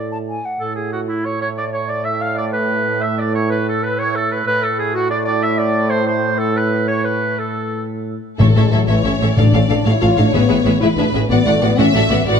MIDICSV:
0, 0, Header, 1, 12, 480
1, 0, Start_track
1, 0, Key_signature, 3, "major"
1, 0, Tempo, 322061
1, 909, Time_signature, 12, 3, 24, 8
1, 9052, Tempo, 331126
1, 12892, Tempo, 321716
1, 18374, End_track
2, 0, Start_track
2, 0, Title_t, "Flute"
2, 0, Program_c, 0, 73
2, 169, Note_on_c, 0, 81, 52
2, 258, Note_off_c, 0, 81, 0
2, 420, Note_on_c, 0, 80, 45
2, 665, Note_on_c, 0, 78, 41
2, 688, Note_off_c, 0, 80, 0
2, 910, Note_off_c, 0, 78, 0
2, 18374, End_track
3, 0, Start_track
3, 0, Title_t, "Violin section"
3, 0, Program_c, 1, 48
3, 12412, Note_on_c, 1, 76, 51
3, 12509, Note_off_c, 1, 76, 0
3, 12650, Note_on_c, 1, 76, 52
3, 12746, Note_off_c, 1, 76, 0
3, 12883, Note_on_c, 1, 76, 48
3, 12982, Note_off_c, 1, 76, 0
3, 13122, Note_on_c, 1, 76, 53
3, 13221, Note_off_c, 1, 76, 0
3, 13371, Note_on_c, 1, 76, 51
3, 13470, Note_off_c, 1, 76, 0
3, 13620, Note_on_c, 1, 76, 53
3, 13717, Note_off_c, 1, 76, 0
3, 13866, Note_on_c, 1, 77, 57
3, 13961, Note_off_c, 1, 77, 0
3, 14105, Note_on_c, 1, 77, 50
3, 14201, Note_off_c, 1, 77, 0
3, 14335, Note_on_c, 1, 77, 52
3, 14433, Note_off_c, 1, 77, 0
3, 14579, Note_on_c, 1, 77, 54
3, 14677, Note_off_c, 1, 77, 0
3, 14812, Note_on_c, 1, 77, 55
3, 14911, Note_off_c, 1, 77, 0
3, 15049, Note_on_c, 1, 77, 53
3, 15147, Note_off_c, 1, 77, 0
3, 15302, Note_on_c, 1, 76, 52
3, 15397, Note_off_c, 1, 76, 0
3, 15534, Note_on_c, 1, 76, 51
3, 15631, Note_off_c, 1, 76, 0
3, 15772, Note_on_c, 1, 76, 49
3, 15869, Note_off_c, 1, 76, 0
3, 16013, Note_on_c, 1, 76, 57
3, 16110, Note_off_c, 1, 76, 0
3, 16256, Note_on_c, 1, 76, 51
3, 16353, Note_off_c, 1, 76, 0
3, 16506, Note_on_c, 1, 76, 57
3, 16600, Note_off_c, 1, 76, 0
3, 16748, Note_on_c, 1, 78, 65
3, 16842, Note_off_c, 1, 78, 0
3, 16974, Note_on_c, 1, 78, 59
3, 17070, Note_off_c, 1, 78, 0
3, 17211, Note_on_c, 1, 78, 53
3, 17308, Note_off_c, 1, 78, 0
3, 17450, Note_on_c, 1, 78, 68
3, 17547, Note_off_c, 1, 78, 0
3, 17710, Note_on_c, 1, 78, 59
3, 17803, Note_off_c, 1, 78, 0
3, 17947, Note_on_c, 1, 78, 58
3, 18040, Note_off_c, 1, 78, 0
3, 18182, Note_on_c, 1, 78, 62
3, 18374, Note_off_c, 1, 78, 0
3, 18374, End_track
4, 0, Start_track
4, 0, Title_t, "Violin section"
4, 0, Program_c, 2, 48
4, 12418, Note_on_c, 2, 69, 67
4, 13082, Note_off_c, 2, 69, 0
4, 13128, Note_on_c, 2, 73, 73
4, 13843, Note_off_c, 2, 73, 0
4, 13848, Note_on_c, 2, 74, 69
4, 14578, Note_off_c, 2, 74, 0
4, 14583, Note_on_c, 2, 73, 70
4, 16017, Note_off_c, 2, 73, 0
4, 16020, Note_on_c, 2, 71, 80
4, 16725, Note_off_c, 2, 71, 0
4, 16738, Note_on_c, 2, 74, 81
4, 17441, Note_off_c, 2, 74, 0
4, 17459, Note_on_c, 2, 76, 85
4, 18162, Note_off_c, 2, 76, 0
4, 18177, Note_on_c, 2, 74, 88
4, 18374, Note_off_c, 2, 74, 0
4, 18374, End_track
5, 0, Start_track
5, 0, Title_t, "Clarinet"
5, 0, Program_c, 3, 71
5, 0, Note_on_c, 3, 74, 50
5, 172, Note_off_c, 3, 74, 0
5, 902, Note_on_c, 3, 69, 65
5, 1133, Note_off_c, 3, 69, 0
5, 1148, Note_on_c, 3, 68, 50
5, 1390, Note_off_c, 3, 68, 0
5, 1396, Note_on_c, 3, 66, 51
5, 1621, Note_on_c, 3, 64, 62
5, 1643, Note_off_c, 3, 66, 0
5, 1877, Note_on_c, 3, 73, 50
5, 1899, Note_off_c, 3, 64, 0
5, 2102, Note_off_c, 3, 73, 0
5, 2111, Note_on_c, 3, 73, 60
5, 2221, Note_off_c, 3, 73, 0
5, 2351, Note_on_c, 3, 74, 58
5, 2561, Note_off_c, 3, 74, 0
5, 2570, Note_on_c, 3, 73, 55
5, 2785, Note_off_c, 3, 73, 0
5, 2794, Note_on_c, 3, 74, 61
5, 3051, Note_off_c, 3, 74, 0
5, 3061, Note_on_c, 3, 76, 64
5, 3290, Note_on_c, 3, 77, 67
5, 3313, Note_off_c, 3, 76, 0
5, 3511, Note_on_c, 3, 74, 66
5, 3533, Note_off_c, 3, 77, 0
5, 3759, Note_on_c, 3, 71, 68
5, 3782, Note_off_c, 3, 74, 0
5, 4470, Note_off_c, 3, 71, 0
5, 4479, Note_on_c, 3, 76, 66
5, 4727, Note_off_c, 3, 76, 0
5, 4736, Note_on_c, 3, 74, 57
5, 4997, Note_on_c, 3, 73, 62
5, 5019, Note_off_c, 3, 74, 0
5, 5200, Note_off_c, 3, 73, 0
5, 5209, Note_on_c, 3, 71, 66
5, 5321, Note_off_c, 3, 71, 0
5, 5491, Note_on_c, 3, 69, 65
5, 5709, Note_on_c, 3, 71, 68
5, 5731, Note_off_c, 3, 69, 0
5, 5937, Note_on_c, 3, 73, 73
5, 5960, Note_off_c, 3, 71, 0
5, 6188, Note_on_c, 3, 69, 66
5, 6210, Note_off_c, 3, 73, 0
5, 6423, Note_off_c, 3, 69, 0
5, 6436, Note_on_c, 3, 71, 57
5, 6540, Note_off_c, 3, 71, 0
5, 6649, Note_on_c, 3, 71, 86
5, 6882, Note_on_c, 3, 69, 70
5, 6904, Note_off_c, 3, 71, 0
5, 7136, Note_on_c, 3, 68, 71
5, 7159, Note_off_c, 3, 69, 0
5, 7350, Note_off_c, 3, 68, 0
5, 7359, Note_on_c, 3, 66, 86
5, 7599, Note_off_c, 3, 66, 0
5, 7622, Note_on_c, 3, 74, 75
5, 7819, Note_off_c, 3, 74, 0
5, 7828, Note_on_c, 3, 74, 79
5, 7941, Note_off_c, 3, 74, 0
5, 8086, Note_on_c, 3, 76, 89
5, 8329, Note_on_c, 3, 74, 83
5, 8352, Note_off_c, 3, 76, 0
5, 8781, Note_on_c, 3, 72, 81
5, 8803, Note_off_c, 3, 74, 0
5, 9038, Note_off_c, 3, 72, 0
5, 9048, Note_on_c, 3, 72, 76
5, 9503, Note_on_c, 3, 69, 77
5, 9525, Note_off_c, 3, 72, 0
5, 9739, Note_off_c, 3, 69, 0
5, 9748, Note_on_c, 3, 71, 68
5, 10210, Note_off_c, 3, 71, 0
5, 10219, Note_on_c, 3, 73, 80
5, 10462, Note_on_c, 3, 71, 68
5, 10484, Note_off_c, 3, 73, 0
5, 10939, Note_off_c, 3, 71, 0
5, 10948, Note_on_c, 3, 69, 52
5, 11670, Note_off_c, 3, 69, 0
5, 18374, End_track
6, 0, Start_track
6, 0, Title_t, "Oboe"
6, 0, Program_c, 4, 68
6, 0, Note_on_c, 4, 74, 52
6, 167, Note_off_c, 4, 74, 0
6, 898, Note_on_c, 4, 69, 60
6, 1116, Note_off_c, 4, 69, 0
6, 1125, Note_on_c, 4, 68, 47
6, 1373, Note_off_c, 4, 68, 0
6, 1382, Note_on_c, 4, 66, 59
6, 1494, Note_off_c, 4, 66, 0
6, 1623, Note_on_c, 4, 64, 58
6, 1865, Note_on_c, 4, 73, 67
6, 1888, Note_off_c, 4, 64, 0
6, 2097, Note_off_c, 4, 73, 0
6, 2106, Note_on_c, 4, 73, 69
6, 2218, Note_off_c, 4, 73, 0
6, 2350, Note_on_c, 4, 74, 70
6, 2461, Note_off_c, 4, 74, 0
6, 2594, Note_on_c, 4, 73, 62
6, 2827, Note_on_c, 4, 74, 67
6, 2849, Note_off_c, 4, 73, 0
6, 3049, Note_on_c, 4, 76, 75
6, 3071, Note_off_c, 4, 74, 0
6, 3310, Note_on_c, 4, 77, 71
6, 3332, Note_off_c, 4, 76, 0
6, 3540, Note_off_c, 4, 77, 0
6, 3548, Note_on_c, 4, 74, 72
6, 3658, Note_off_c, 4, 74, 0
6, 3775, Note_on_c, 4, 71, 75
6, 4514, Note_on_c, 4, 76, 71
6, 4537, Note_off_c, 4, 71, 0
6, 4767, Note_on_c, 4, 74, 68
6, 4790, Note_off_c, 4, 76, 0
6, 4983, Note_off_c, 4, 74, 0
6, 4992, Note_on_c, 4, 73, 80
6, 5225, Note_off_c, 4, 73, 0
6, 5241, Note_on_c, 4, 71, 72
6, 5470, Note_off_c, 4, 71, 0
6, 5496, Note_on_c, 4, 69, 66
6, 5713, Note_on_c, 4, 71, 75
6, 5736, Note_off_c, 4, 69, 0
6, 5957, Note_on_c, 4, 73, 88
6, 5979, Note_off_c, 4, 71, 0
6, 6199, Note_on_c, 4, 69, 78
6, 6221, Note_off_c, 4, 73, 0
6, 6433, Note_on_c, 4, 71, 73
6, 6455, Note_off_c, 4, 69, 0
6, 6657, Note_off_c, 4, 71, 0
6, 6666, Note_on_c, 4, 71, 101
6, 6909, Note_on_c, 4, 69, 76
6, 6932, Note_off_c, 4, 71, 0
6, 7134, Note_off_c, 4, 69, 0
6, 7143, Note_on_c, 4, 68, 81
6, 7373, Note_off_c, 4, 68, 0
6, 7388, Note_on_c, 4, 66, 78
6, 7602, Note_off_c, 4, 66, 0
6, 7611, Note_on_c, 4, 74, 88
6, 7718, Note_off_c, 4, 74, 0
6, 7859, Note_on_c, 4, 74, 97
6, 8093, Note_on_c, 4, 76, 95
6, 8115, Note_off_c, 4, 74, 0
6, 8320, Note_off_c, 4, 76, 0
6, 8329, Note_on_c, 4, 74, 90
6, 8799, Note_on_c, 4, 72, 103
6, 8822, Note_off_c, 4, 74, 0
6, 9042, Note_off_c, 4, 72, 0
6, 9051, Note_on_c, 4, 72, 81
6, 9506, Note_off_c, 4, 72, 0
6, 9514, Note_on_c, 4, 69, 87
6, 9767, Note_on_c, 4, 71, 75
6, 9789, Note_off_c, 4, 69, 0
6, 10233, Note_off_c, 4, 71, 0
6, 10241, Note_on_c, 4, 73, 73
6, 10473, Note_on_c, 4, 71, 65
6, 10495, Note_off_c, 4, 73, 0
6, 10961, Note_on_c, 4, 69, 65
6, 10983, Note_off_c, 4, 71, 0
6, 11691, Note_off_c, 4, 69, 0
6, 18374, End_track
7, 0, Start_track
7, 0, Title_t, "Viola section"
7, 0, Program_c, 5, 48
7, 12429, Note_on_c, 5, 69, 64
7, 12431, Note_on_c, 5, 73, 65
7, 12522, Note_off_c, 5, 69, 0
7, 12524, Note_off_c, 5, 73, 0
7, 12657, Note_on_c, 5, 69, 51
7, 12664, Note_on_c, 5, 73, 53
7, 12752, Note_off_c, 5, 69, 0
7, 12757, Note_off_c, 5, 73, 0
7, 12909, Note_on_c, 5, 69, 49
7, 12916, Note_on_c, 5, 73, 51
7, 13003, Note_off_c, 5, 69, 0
7, 13008, Note_off_c, 5, 73, 0
7, 13139, Note_on_c, 5, 73, 53
7, 13151, Note_on_c, 5, 69, 54
7, 13235, Note_off_c, 5, 73, 0
7, 13244, Note_off_c, 5, 69, 0
7, 13382, Note_on_c, 5, 73, 47
7, 13386, Note_on_c, 5, 69, 47
7, 13478, Note_off_c, 5, 73, 0
7, 13481, Note_off_c, 5, 69, 0
7, 13633, Note_on_c, 5, 69, 51
7, 13639, Note_on_c, 5, 73, 56
7, 13727, Note_off_c, 5, 69, 0
7, 13731, Note_off_c, 5, 73, 0
7, 13862, Note_on_c, 5, 69, 59
7, 13958, Note_off_c, 5, 69, 0
7, 14098, Note_on_c, 5, 69, 46
7, 14105, Note_off_c, 5, 69, 0
7, 14105, Note_on_c, 5, 69, 51
7, 14201, Note_off_c, 5, 69, 0
7, 14348, Note_on_c, 5, 69, 52
7, 14351, Note_off_c, 5, 69, 0
7, 14351, Note_on_c, 5, 69, 49
7, 14446, Note_off_c, 5, 69, 0
7, 14578, Note_on_c, 5, 69, 55
7, 14676, Note_off_c, 5, 69, 0
7, 14813, Note_on_c, 5, 69, 52
7, 14816, Note_off_c, 5, 69, 0
7, 14816, Note_on_c, 5, 69, 52
7, 14914, Note_off_c, 5, 69, 0
7, 15057, Note_on_c, 5, 69, 47
7, 15058, Note_off_c, 5, 69, 0
7, 15058, Note_on_c, 5, 69, 48
7, 15154, Note_off_c, 5, 69, 0
7, 15302, Note_on_c, 5, 68, 68
7, 15302, Note_on_c, 5, 71, 65
7, 15397, Note_off_c, 5, 68, 0
7, 15397, Note_off_c, 5, 71, 0
7, 15527, Note_on_c, 5, 68, 51
7, 15534, Note_on_c, 5, 71, 49
7, 15625, Note_off_c, 5, 68, 0
7, 15631, Note_off_c, 5, 71, 0
7, 15783, Note_on_c, 5, 68, 50
7, 15783, Note_on_c, 5, 71, 53
7, 15878, Note_off_c, 5, 68, 0
7, 15878, Note_off_c, 5, 71, 0
7, 16019, Note_on_c, 5, 68, 62
7, 16023, Note_on_c, 5, 71, 67
7, 16115, Note_off_c, 5, 68, 0
7, 16119, Note_off_c, 5, 71, 0
7, 16267, Note_on_c, 5, 68, 51
7, 16267, Note_on_c, 5, 71, 53
7, 16361, Note_off_c, 5, 71, 0
7, 16362, Note_off_c, 5, 68, 0
7, 16503, Note_on_c, 5, 68, 59
7, 16510, Note_on_c, 5, 71, 58
7, 16598, Note_off_c, 5, 68, 0
7, 16604, Note_off_c, 5, 71, 0
7, 16750, Note_on_c, 5, 74, 67
7, 16754, Note_on_c, 5, 66, 65
7, 16843, Note_off_c, 5, 74, 0
7, 16847, Note_off_c, 5, 66, 0
7, 16984, Note_on_c, 5, 74, 57
7, 16988, Note_on_c, 5, 66, 52
7, 17078, Note_off_c, 5, 74, 0
7, 17082, Note_off_c, 5, 66, 0
7, 17226, Note_on_c, 5, 74, 61
7, 17228, Note_on_c, 5, 66, 59
7, 17320, Note_off_c, 5, 74, 0
7, 17322, Note_off_c, 5, 66, 0
7, 17460, Note_on_c, 5, 66, 64
7, 17464, Note_on_c, 5, 74, 64
7, 17555, Note_off_c, 5, 66, 0
7, 17559, Note_off_c, 5, 74, 0
7, 17694, Note_on_c, 5, 66, 62
7, 17695, Note_on_c, 5, 74, 65
7, 17790, Note_off_c, 5, 66, 0
7, 17791, Note_off_c, 5, 74, 0
7, 17920, Note_on_c, 5, 66, 63
7, 17926, Note_on_c, 5, 74, 59
7, 18019, Note_off_c, 5, 66, 0
7, 18024, Note_off_c, 5, 74, 0
7, 18161, Note_on_c, 5, 66, 83
7, 18165, Note_on_c, 5, 74, 73
7, 18374, Note_off_c, 5, 66, 0
7, 18374, Note_off_c, 5, 74, 0
7, 18374, End_track
8, 0, Start_track
8, 0, Title_t, "French horn section"
8, 0, Program_c, 6, 60
8, 12402, Note_on_c, 6, 57, 75
8, 12513, Note_off_c, 6, 57, 0
8, 12648, Note_on_c, 6, 56, 69
8, 12884, Note_off_c, 6, 56, 0
8, 12891, Note_on_c, 6, 54, 75
8, 13120, Note_on_c, 6, 52, 81
8, 13129, Note_off_c, 6, 54, 0
8, 13369, Note_off_c, 6, 52, 0
8, 13375, Note_on_c, 6, 61, 72
8, 13587, Note_off_c, 6, 61, 0
8, 13605, Note_on_c, 6, 61, 67
8, 13847, Note_on_c, 6, 62, 80
8, 13849, Note_off_c, 6, 61, 0
8, 14090, Note_off_c, 6, 62, 0
8, 14107, Note_on_c, 6, 61, 78
8, 14346, Note_off_c, 6, 61, 0
8, 14346, Note_on_c, 6, 62, 80
8, 14586, Note_off_c, 6, 62, 0
8, 14610, Note_on_c, 6, 64, 89
8, 14822, Note_on_c, 6, 65, 101
8, 14834, Note_off_c, 6, 64, 0
8, 15059, Note_off_c, 6, 65, 0
8, 15081, Note_on_c, 6, 62, 85
8, 15306, Note_on_c, 6, 59, 88
8, 15311, Note_off_c, 6, 62, 0
8, 15995, Note_on_c, 6, 64, 112
8, 16005, Note_off_c, 6, 59, 0
8, 16108, Note_off_c, 6, 64, 0
8, 16234, Note_on_c, 6, 62, 89
8, 16348, Note_off_c, 6, 62, 0
8, 16494, Note_on_c, 6, 61, 75
8, 16719, Note_on_c, 6, 59, 98
8, 16731, Note_off_c, 6, 61, 0
8, 16962, Note_off_c, 6, 59, 0
8, 16968, Note_on_c, 6, 57, 90
8, 17207, Note_off_c, 6, 57, 0
8, 17210, Note_on_c, 6, 59, 102
8, 17453, Note_off_c, 6, 59, 0
8, 17453, Note_on_c, 6, 61, 94
8, 17685, Note_on_c, 6, 57, 97
8, 17695, Note_off_c, 6, 61, 0
8, 17930, Note_off_c, 6, 57, 0
8, 17938, Note_on_c, 6, 59, 81
8, 18161, Note_off_c, 6, 59, 0
8, 18179, Note_on_c, 6, 59, 105
8, 18374, Note_off_c, 6, 59, 0
8, 18374, End_track
9, 0, Start_track
9, 0, Title_t, "Cello section"
9, 0, Program_c, 7, 48
9, 12419, Note_on_c, 7, 45, 67
9, 12514, Note_off_c, 7, 45, 0
9, 12661, Note_on_c, 7, 45, 56
9, 12754, Note_off_c, 7, 45, 0
9, 12900, Note_on_c, 7, 45, 58
9, 12996, Note_off_c, 7, 45, 0
9, 13143, Note_on_c, 7, 45, 55
9, 13238, Note_off_c, 7, 45, 0
9, 13377, Note_on_c, 7, 45, 46
9, 13474, Note_off_c, 7, 45, 0
9, 13622, Note_on_c, 7, 45, 54
9, 13718, Note_off_c, 7, 45, 0
9, 13865, Note_on_c, 7, 45, 58
9, 13961, Note_off_c, 7, 45, 0
9, 14101, Note_on_c, 7, 45, 54
9, 14197, Note_off_c, 7, 45, 0
9, 14343, Note_on_c, 7, 45, 59
9, 14439, Note_off_c, 7, 45, 0
9, 14582, Note_on_c, 7, 45, 61
9, 14679, Note_off_c, 7, 45, 0
9, 14825, Note_on_c, 7, 45, 60
9, 14921, Note_off_c, 7, 45, 0
9, 15068, Note_on_c, 7, 45, 57
9, 15162, Note_off_c, 7, 45, 0
9, 15313, Note_on_c, 7, 45, 63
9, 15406, Note_off_c, 7, 45, 0
9, 15534, Note_on_c, 7, 45, 60
9, 15630, Note_off_c, 7, 45, 0
9, 15776, Note_on_c, 7, 45, 63
9, 15872, Note_off_c, 7, 45, 0
9, 16026, Note_on_c, 7, 45, 61
9, 16121, Note_off_c, 7, 45, 0
9, 16265, Note_on_c, 7, 45, 55
9, 16360, Note_off_c, 7, 45, 0
9, 16493, Note_on_c, 7, 45, 59
9, 16590, Note_off_c, 7, 45, 0
9, 16740, Note_on_c, 7, 45, 61
9, 16835, Note_off_c, 7, 45, 0
9, 16977, Note_on_c, 7, 45, 58
9, 17073, Note_off_c, 7, 45, 0
9, 17217, Note_on_c, 7, 45, 78
9, 17313, Note_off_c, 7, 45, 0
9, 17458, Note_on_c, 7, 45, 77
9, 17554, Note_off_c, 7, 45, 0
9, 17699, Note_on_c, 7, 45, 74
9, 17794, Note_off_c, 7, 45, 0
9, 17935, Note_on_c, 7, 45, 59
9, 18031, Note_off_c, 7, 45, 0
9, 18181, Note_on_c, 7, 45, 82
9, 18374, Note_off_c, 7, 45, 0
9, 18374, End_track
10, 0, Start_track
10, 0, Title_t, "Timpani"
10, 0, Program_c, 8, 47
10, 12422, Note_on_c, 8, 45, 80
10, 13084, Note_off_c, 8, 45, 0
10, 13858, Note_on_c, 8, 45, 68
10, 14532, Note_off_c, 8, 45, 0
10, 15296, Note_on_c, 8, 45, 75
10, 15964, Note_off_c, 8, 45, 0
10, 18374, End_track
11, 0, Start_track
11, 0, Title_t, "Trombone section"
11, 0, Program_c, 10, 61
11, 0, Note_on_c, 10, 45, 74
11, 607, Note_off_c, 10, 45, 0
11, 894, Note_on_c, 10, 45, 60
11, 6591, Note_off_c, 10, 45, 0
11, 6647, Note_on_c, 10, 45, 70
11, 12116, Note_off_c, 10, 45, 0
11, 18374, End_track
12, 0, Start_track
12, 0, Title_t, "Double bass section"
12, 0, Program_c, 11, 48
12, 12440, Note_on_c, 11, 33, 66
12, 12531, Note_off_c, 11, 33, 0
12, 12660, Note_on_c, 11, 33, 52
12, 12754, Note_off_c, 11, 33, 0
12, 12908, Note_on_c, 11, 33, 49
12, 13002, Note_off_c, 11, 33, 0
12, 13133, Note_on_c, 11, 33, 56
12, 13230, Note_off_c, 11, 33, 0
12, 13375, Note_on_c, 11, 33, 53
12, 13472, Note_off_c, 11, 33, 0
12, 13620, Note_on_c, 11, 33, 55
12, 13717, Note_off_c, 11, 33, 0
12, 13859, Note_on_c, 11, 33, 59
12, 13956, Note_off_c, 11, 33, 0
12, 14110, Note_on_c, 11, 33, 58
12, 14205, Note_off_c, 11, 33, 0
12, 14358, Note_on_c, 11, 33, 50
12, 14452, Note_off_c, 11, 33, 0
12, 14586, Note_on_c, 11, 33, 58
12, 14682, Note_off_c, 11, 33, 0
12, 14835, Note_on_c, 11, 33, 57
12, 14929, Note_off_c, 11, 33, 0
12, 15064, Note_on_c, 11, 33, 62
12, 15159, Note_off_c, 11, 33, 0
12, 15302, Note_on_c, 11, 33, 68
12, 15397, Note_off_c, 11, 33, 0
12, 15540, Note_on_c, 11, 33, 59
12, 15635, Note_off_c, 11, 33, 0
12, 15780, Note_on_c, 11, 33, 57
12, 15875, Note_off_c, 11, 33, 0
12, 16017, Note_on_c, 11, 33, 64
12, 16113, Note_off_c, 11, 33, 0
12, 16248, Note_on_c, 11, 33, 60
12, 16346, Note_off_c, 11, 33, 0
12, 16495, Note_on_c, 11, 33, 57
12, 16592, Note_off_c, 11, 33, 0
12, 16738, Note_on_c, 11, 33, 66
12, 16834, Note_off_c, 11, 33, 0
12, 16974, Note_on_c, 11, 33, 69
12, 17070, Note_off_c, 11, 33, 0
12, 17228, Note_on_c, 11, 33, 57
12, 17322, Note_off_c, 11, 33, 0
12, 17464, Note_on_c, 11, 33, 64
12, 17558, Note_off_c, 11, 33, 0
12, 17706, Note_on_c, 11, 33, 69
12, 17800, Note_off_c, 11, 33, 0
12, 17933, Note_on_c, 11, 33, 68
12, 18029, Note_off_c, 11, 33, 0
12, 18166, Note_on_c, 11, 33, 74
12, 18374, Note_off_c, 11, 33, 0
12, 18374, End_track
0, 0, End_of_file